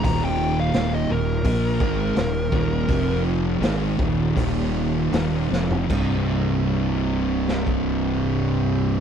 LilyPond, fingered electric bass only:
\new Staff \with { instrumentName = "Fingered electric bass" } { \clef bass \time 4/4 \key c \minor \tempo 4 = 80 ees,,4 ees,,8 ees,,8 bes,,8 aes,,8 ees,,8 ees,,8 | f,,4 aes,,8 ees,,8 ees,,4 ees,,8 f,,8 | c,,1 | }